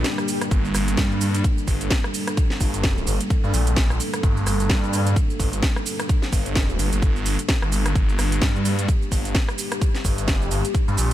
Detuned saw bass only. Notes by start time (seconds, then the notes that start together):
0.51 G1
0.75 G1
0.98 G2
1.68 G1
2.61 G1
3.07 G1
3.44 G2
3.54 A#1
4.23 G1
4.47 G1
4.70 G2
5.40 G1
6.33 G1
6.79 G1
6.92 G1
7.62 G1
7.95 G1
8.19 G1
8.42 G2
9.12 G1
10.05 G1
10.51 G1
10.88 G2
10.98 A#1